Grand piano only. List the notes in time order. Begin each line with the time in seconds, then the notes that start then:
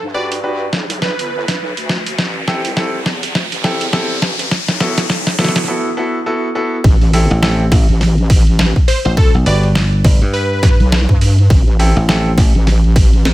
0.15 D4 F#4 G4 B4
0.44 D4 F#4 G4 B4
2.47 C4 E4 G4 A4
2.77 C4 E4 G4 A4
3.64 C4 E4 G4 A4
3.93 C4 E4 G4 A4
4.80 B3 E4 F#4 A4
5.39 B3 E4 F#4 A4
5.68 B3 E4 F#4 A4
5.97 B3 E4 F#4 A4
6.26 B3 E4 F#4 A4
6.55 B3 E4 F#4 A4
7.13 C4 E4 G4 A4
7.42 C4 E4 G4 A4
9.46 D4 F#4 G4 B4
11.79 C4 E4 G4 A4
12.09 C4 E4 G4 A4